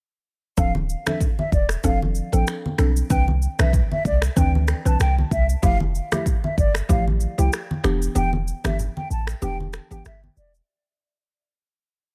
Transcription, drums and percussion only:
0.57 kick, low conga, shaker
0.75 high conga
0.89 shaker
1.07 finger snap, cross-stick, high conga, shaker
1.20 kick, low conga, shaker
1.39 high conga
1.52 kick, shaker
1.69 finger snap, cross-stick, shaker
1.84 kick, low conga, shaker
2.02 high conga
2.15 shaker
2.33 shaker
2.47 finger snap, cross-stick, shaker
2.66 high conga
2.78 finger snap, cross-stick, shaker
2.96 shaker
3.10 kick, low conga, shaker
3.28 high conga
3.42 shaker
3.59 finger snap, cross-stick, high conga, shaker
3.73 kick, low conga, shaker
3.92 high conga
4.05 kick, shaker
4.22 finger snap, cross-stick, shaker
4.37 kick, low conga, shaker
4.55 high conga
4.68 finger snap, cross-stick, shaker
4.86 shaker
5.00 finger snap, cross-stick, shaker
5.18 high conga
5.31 kick, shaker
5.49 shaker
5.63 kick, low conga, shaker
5.80 high conga
5.95 shaker
6.12 finger snap, cross-stick, high conga, shaker
6.26 kick, low conga, shaker
6.44 high conga
6.58 kick, shaker
6.75 finger snap, cross-stick, shaker
6.89 kick, low conga, shaker
7.08 high conga
7.20 shaker
7.39 shaker
7.53 finger snap, cross-stick, shaker
7.71 high conga
7.84 finger snap, cross-stick, shaker
8.02 shaker
8.16 low conga, shaker
8.33 high conga
8.48 shaker
8.65 finger snap, cross-stick, high conga, shaker
8.79 low conga, shaker
8.97 high conga
9.11 shaker
9.27 finger snap, cross-stick, shaker
9.42 low conga, shaker
9.60 high conga
9.73 finger snap, cross-stick, shaker
9.91 shaker
10.05 finger snap, cross-stick, shaker
10.24 high conga
10.37 shaker
10.55 shaker

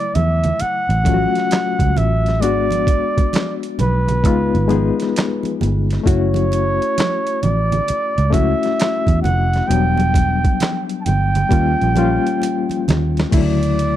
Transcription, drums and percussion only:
0.15 closed hi-hat, muted conga, high conga, low conga
0.44 closed hi-hat, low conga
0.60 closed hi-hat, muted conga
0.90 closed hi-hat
1.05 kick, closed hi-hat, muted conga, high conga
1.35 snare, closed hi-hat
1.51 snare, clap, closed hi-hat, muted conga
1.79 kick, closed hi-hat, high conga
1.97 closed hi-hat, muted conga, low conga
2.26 snare, closed hi-hat
2.42 closed hi-hat, muted conga
2.71 closed hi-hat, high conga
2.87 kick, closed hi-hat, muted conga
3.18 kick, closed hi-hat
3.33 snare, clap, closed hi-hat, muted conga, high conga
3.63 closed hi-hat
3.79 closed hi-hat, muted conga, high conga, low conga
4.08 closed hi-hat, low conga
4.24 kick, closed hi-hat
4.55 closed hi-hat
4.69 closed hi-hat, muted conga, high conga
5.00 snare, closed hi-hat
5.16 snare, clap, closed hi-hat
5.43 closed hi-hat, high conga
5.61 closed hi-hat, muted conga, low conga
5.91 snare, closed hi-hat
6.06 kick, closed hi-hat
6.34 closed hi-hat, high conga
6.52 closed hi-hat, muted conga
6.82 closed hi-hat
6.98 snare, clap, closed hi-hat, muted conga, high conga
7.27 closed hi-hat
7.43 closed hi-hat, high conga, low conga
7.72 closed hi-hat, low conga
7.88 closed hi-hat, muted conga
8.18 closed hi-hat
8.33 kick, closed hi-hat, high conga
8.63 snare, closed hi-hat
8.80 snare, clap, closed hi-hat
9.07 kick, closed hi-hat, high conga
9.24 closed hi-hat, muted conga, low conga
9.53 snare, closed hi-hat
9.71 closed hi-hat
9.97 closed hi-hat, high conga
10.14 kick, closed hi-hat, muted conga
10.44 kick, closed hi-hat
10.60 snare, clap, closed hi-hat, muted conga, high conga
10.89 closed hi-hat
11.06 closed hi-hat, high conga, low conga
11.35 closed hi-hat, low conga
11.51 kick, closed hi-hat, muted conga
11.82 closed hi-hat
11.96 closed hi-hat, muted conga, high conga
12.27 closed hi-hat
12.42 closed hi-hat, muted conga
12.70 closed hi-hat, high conga
12.88 snare, closed hi-hat, low conga
13.17 snare, closed hi-hat
13.32 kick, closed hi-hat, crash
13.63 closed hi-hat
13.79 closed hi-hat

